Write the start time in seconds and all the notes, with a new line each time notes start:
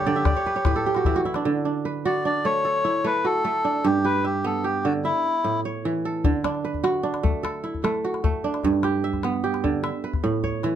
Already playing: G2 A3 G4 C#5 E5 F#5 G5
0.06 D3 D5, calabash click
0.16 E5
0.25 D5, calabash thump, calabash click
0.35 C#5, calabash click
0.46 B4
0.55 C#5, calabash click
0.65 A2 B4, calabash thump, calabash click
0.76 A4
0.86 G4
0.95 F#4, calabash click
1.05 E3 E4, calabash thump, calabash click
1.15 F#4, calabash click
1.25 E4
1.34 D4, calabash click
1.45 D3
1.65 D4
1.85 B4
2.05 F#4 D5
2.25 D4 D5
2.45 A3 C#5
2.65 A4
2.85 E4
3.04 A3 B4
3.24 F#4 A4
3.45 A3
3.65 D4
3.84 G2 G4
4.04 G4 B4
4.25 G4 E5
4.44 B3 A4
4.64 G4
4.84 D3 F#4
5.04 E4 E5
5.44 A2
5.65 C#5
5.85 E3
6.05 A4
6.24 D3, calabash thump
6.44 D4, calabash click
6.55 calabash click
6.65 B4, calabash click
6.74 calabash thump
6.84 F#4, calabash click
7.03 D4, calabash click
7.14 calabash click
7.23 A3, calabash thump
7.43 A4, calabash click
7.64 E4, calabash click
7.74 calabash thump
7.84 A3, calabash click
7.94 calabash click
8.04 F#4
8.14 calabash click
8.24 A3, calabash thump
8.44 D4
8.54 calabash click
8.64 G2, calabash thump, calabash click
8.73 calabash click
8.83 G4, calabash click
9.04 E5
9.13 calabash thump, calabash click
9.23 B3, calabash click
9.33 calabash click
9.44 G4, calabash click
9.54 calabash click
9.64 D3, calabash thump, calabash click
9.83 E5, calabash click
10.04 B4
10.13 calabash thump, calabash click
10.24 A2, calabash thump
10.43 C#5, calabash thump
10.63 E3, calabash click